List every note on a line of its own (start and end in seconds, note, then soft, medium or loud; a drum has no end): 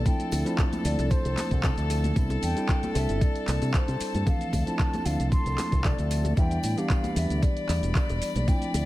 0.00 6.39 A4 medium
0.00 6.38 A5 medium
0.05 0.42 F3 medium
0.05 0.42 A3 medium
0.05 0.43 C4 medium
0.05 0.43 D4 medium
0.05 0.43 E4 loud
0.05 0.44 G5 medium
0.05 kick loud
0.05 closed hi-hat medium
0.05 tambourine soft
0.05 shaker soft
0.20 closed hi-hat soft
0.20 shaker soft
0.31 0.42 D2 medium
0.31 open hi-hat loud
0.31 tambourine loud
0.31 high bongo medium
0.31 shaker medium
0.45 2.13 F3 medium
0.45 2.13 A3 medium
0.45 2.13 C4 medium
0.45 2.14 D4 medium
0.45 2.14 E4 loud
0.45 closed hi-hat soft
0.45 tambourine soft
0.45 shaker soft
0.58 kick loud
0.58 clap loud
0.58 closed hi-hat medium
0.58 tambourine medium
0.58 high bongo medium
0.58 shaker soft
0.72 closed hi-hat soft
0.72 tambourine soft
0.72 high conga loud
0.72 shaker soft
0.85 0.95 D2 loud
0.85 1.12 D5 loud
0.85 open hi-hat loud
0.85 tambourine medium
0.85 shaker medium
0.99 1.08 C2 loud
0.99 closed hi-hat soft
0.99 tambourine soft
0.99 high bongo medium
0.99 shaker soft
1.10 1.63 C5 loud
1.10 kick loud
1.10 closed hi-hat medium
1.10 tambourine soft
1.10 shaker soft
1.25 1.34 C2 loud
1.25 closed hi-hat soft
1.25 high bongo medium
1.25 shaker soft
1.37 clap medium
1.37 open hi-hat loud
1.37 tambourine medium
1.37 high conga medium
1.37 shaker medium
1.51 1.70 C2 loud
1.51 kick medium
1.51 closed hi-hat soft
1.51 tambourine soft
1.51 shaker soft
1.64 kick loud
1.64 clap loud
1.64 closed hi-hat medium
1.64 tambourine medium
1.64 high bongo medium
1.64 shaker soft
1.77 2.11 D2 loud
1.77 closed hi-hat soft
1.77 tambourine soft
1.77 shaker soft
1.90 open hi-hat loud
1.90 tambourine loud
1.90 high bongo medium
1.90 shaker medium
2.04 closed hi-hat soft
2.04 tambourine soft
2.04 high conga medium
2.04 shaker soft
2.16 2.36 C2 loud
2.16 2.53 G3 medium
2.16 2.53 B3 medium
2.16 2.53 C4 medium
2.16 2.53 D4 medium
2.16 2.53 E4 medium
2.16 kick loud
2.16 closed hi-hat medium
2.16 tambourine medium
2.16 shaker soft
2.30 closed hi-hat soft
2.30 high bongo medium
2.30 shaker soft
2.43 2.53 E2 medium
2.43 2.92 G5 loud
2.43 open hi-hat loud
2.43 tambourine medium
2.43 shaker medium
2.56 4.23 G3 medium
2.56 4.24 C4 medium
2.56 4.24 D4 medium
2.56 4.24 E4 loud
2.56 closed hi-hat soft
2.56 tambourine soft
2.56 high bongo medium
2.56 shaker soft
2.69 kick loud
2.69 clap loud
2.69 closed hi-hat medium
2.69 tambourine soft
2.69 shaker soft
2.83 closed hi-hat soft
2.83 tambourine soft
2.83 high conga loud
2.83 shaker soft
2.95 3.06 C2 loud
2.95 3.24 E5 medium
2.95 open hi-hat loud
2.95 tambourine medium
2.95 high bongo medium
2.95 shaker medium
3.09 3.18 G1 loud
3.09 closed hi-hat soft
3.09 tambourine soft
3.09 shaker soft
3.21 3.74 D5 loud
3.21 kick loud
3.21 closed hi-hat medium
3.21 tambourine soft
3.21 high bongo soft
3.21 shaker soft
3.35 closed hi-hat soft
3.48 3.58 C2 loud
3.48 clap medium
3.48 open hi-hat loud
3.48 tambourine medium
3.48 high conga medium
3.48 shaker medium
3.62 3.71 C3 loud
3.62 closed hi-hat soft
3.62 tambourine soft
3.62 high bongo medium
3.62 shaker soft
3.74 4.23 C5 medium
3.74 kick loud
3.74 clap loud
3.74 closed hi-hat medium
3.74 tambourine medium
3.74 shaker soft
3.88 3.97 C3 medium
3.88 closed hi-hat soft
3.88 tambourine soft
3.88 high bongo medium
3.88 shaker soft
4.00 muted fingered electric bass stroke soft
4.00 open hi-hat loud
4.00 tambourine medium
4.00 shaker medium
4.14 4.24 G2 medium
4.14 closed hi-hat soft
4.14 tambourine soft
4.14 high conga loud
4.14 shaker soft
4.26 4.64 E3 medium
4.26 4.63 F3 medium
4.26 4.64 A3 medium
4.26 4.64 C4 medium
4.26 4.64 D4 medium
4.26 4.64 F5 loud
4.26 kick loud
4.26 closed hi-hat medium
4.26 tambourine medium
4.26 high bongo medium
4.26 shaker soft
4.41 closed hi-hat soft
4.41 shaker soft
4.53 4.63 D2 medium
4.53 kick medium
4.53 open hi-hat loud
4.53 tambourine medium
4.53 high bongo soft
4.53 shaker medium
4.66 6.34 F3 medium
4.66 6.34 A3 medium
4.66 6.34 C4 medium
4.66 6.35 D4 medium
4.66 6.35 E4 loud
4.66 5.07 A5 loud
4.66 closed hi-hat soft
4.66 tambourine soft
4.66 shaker soft
4.79 kick loud
4.79 clap loud
4.79 closed hi-hat medium
4.79 tambourine soft
4.79 shaker soft
4.93 closed hi-hat soft
4.93 tambourine soft
4.93 high bongo medium
4.93 high conga loud
4.93 shaker soft
5.06 5.16 D2 loud
5.06 5.31 F5 loud
5.06 open hi-hat loud
5.06 tambourine medium
5.06 shaker medium
5.20 5.29 C2 loud
5.20 closed hi-hat soft
5.20 tambourine soft
5.20 high bongo soft
5.20 shaker soft
5.31 5.86 C6 loud
5.31 kick loud
5.31 closed hi-hat medium
5.31 tambourine medium
5.31 shaker soft
5.46 5.55 C2 loud
5.46 closed hi-hat soft
5.46 tambourine soft
5.46 shaker soft
5.58 clap medium
5.58 open hi-hat loud
5.58 tambourine medium
5.58 high bongo medium
5.58 high conga medium
5.58 shaker medium
5.72 5.91 C2 loud
5.72 kick medium
5.72 closed hi-hat soft
5.72 tambourine soft
5.72 shaker soft
5.84 6.37 D5 loud
5.84 kick loud
5.84 clap loud
5.84 closed hi-hat medium
5.84 tambourine medium
5.84 high bongo soft
5.84 shaker soft
5.98 6.32 D2 loud
5.98 closed hi-hat soft
5.98 tambourine soft
5.98 shaker soft
6.11 open hi-hat loud
6.11 tambourine loud
6.11 shaker medium
6.24 closed hi-hat soft
6.24 tambourine soft
6.24 high bongo medium
6.24 high conga medium
6.24 shaker soft
6.37 6.57 E2 loud
6.37 6.74 E3 medium
6.37 6.74 G3 medium
6.37 6.74 B3 medium
6.37 6.74 D4 medium
6.37 6.74 E4 medium
6.37 8.85 D5 medium
6.37 6.79 G5 loud
6.37 8.85 B5 medium
6.37 kick loud
6.37 closed hi-hat medium
6.37 tambourine medium
6.37 high bongo soft
6.37 shaker soft
6.51 closed hi-hat soft
6.51 shaker soft
6.63 6.74 A2 medium
6.63 open hi-hat loud
6.63 tambourine medium
6.63 shaker medium
6.77 8.44 E3 medium
6.77 8.45 G3 medium
6.77 8.45 B3 medium
6.77 8.45 D4 medium
6.77 8.45 G4 loud
6.77 7.18 F5 loud
6.77 closed hi-hat soft
6.77 tambourine soft
6.77 high bongo medium
6.77 shaker soft
6.90 kick loud
6.90 clap loud
6.90 closed hi-hat medium
6.90 tambourine medium
6.90 shaker soft
7.04 closed hi-hat soft
7.04 tambourine soft
7.04 high bongo soft
7.04 high conga loud
7.04 shaker soft
7.16 7.27 E2 loud
7.16 7.44 E5 medium
7.16 open hi-hat loud
7.16 tambourine medium
7.16 shaker medium
7.30 7.39 D2 medium
7.30 closed hi-hat soft
7.30 tambourine soft
7.30 shaker soft
7.43 7.94 D5 loud
7.43 kick loud
7.43 closed hi-hat medium
7.43 tambourine soft
7.43 high bongo medium
7.43 shaker soft
7.57 closed hi-hat soft
7.69 7.79 E2 loud
7.69 clap medium
7.69 open hi-hat loud
7.69 tambourine medium
7.69 high bongo soft
7.69 high conga medium
7.69 shaker medium
7.83 7.92 E1 medium
7.83 closed hi-hat soft
7.83 tambourine soft
7.83 shaker soft
7.95 8.50 D5 medium
7.95 kick loud
7.95 clap loud
7.95 closed hi-hat medium
7.95 tambourine medium
7.95 shaker soft
8.09 8.18 E1 medium
8.09 closed hi-hat soft
8.09 tambourine soft
8.09 high bongo medium
8.09 shaker soft
8.21 muted fingered electric bass stroke soft
8.21 open hi-hat loud
8.21 tambourine medium
8.21 shaker medium
8.35 8.45 B1 medium
8.35 closed hi-hat soft
8.35 tambourine soft
8.35 high bongo medium
8.35 high conga loud
8.35 shaker soft
8.48 8.85 F3 medium
8.48 8.85 A3 medium
8.48 8.85 C4 medium
8.48 8.85 D4 medium
8.48 8.85 E4 medium
8.48 8.85 G5 medium
8.48 kick loud
8.48 closed hi-hat medium
8.48 tambourine medium
8.48 shaker soft
8.62 closed hi-hat soft
8.62 shaker soft
8.74 8.84 D2 medium
8.74 open hi-hat loud
8.74 tambourine medium
8.74 high bongo medium
8.74 shaker medium